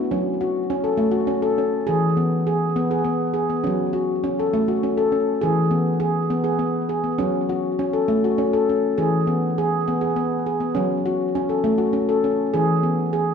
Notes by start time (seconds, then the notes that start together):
Already playing: B3
0.11 F#3 C#4
0.41 F#4
0.70 C#4
0.84 A4
0.97 A3
1.11 F#4
1.27 C#4
1.42 A4
1.58 C#4
1.87 E3 G#4
2.17 B3
2.47 G#4
2.76 B3
2.91 G#4
3.04 B3
3.34 G#4
3.50 B3
3.64 F#3 C#4
3.93 F#4
4.24 C#4
4.39 A4
4.53 A3
4.68 F#4
4.83 C#4
4.97 A4
5.12 C#4
5.41 E3 G#4
5.71 B3
6.00 G#4
6.30 B3
6.44 G#4
6.59 B3
6.89 G#4
7.04 B3
7.18 F#3 C#4
7.49 F#4
7.79 C#4
7.93 A4
8.08 A3
8.24 F#4
8.38 C#4
8.53 A4
8.69 C#4
8.98 E3 G#4
9.27 B3
9.58 G#4
9.88 B3
10.01 G#4
10.16 B3
10.46 G#4
10.60 B3
10.75 F#3 C#4
11.06 F#4
11.35 C#4
11.49 A4
11.64 A3
11.78 F#4
11.93 C#4
12.09 A4
12.24 C#4
12.54 E3 G#4
12.83 B3
13.13 G#4